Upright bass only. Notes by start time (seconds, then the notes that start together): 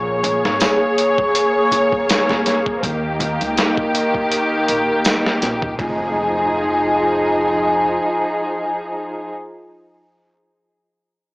Already playing: A#1
0.45 G#1
2.30 F1
2.84 D#2
3.42 C#2
4.69 A#1
5.43 A#1
5.79 F1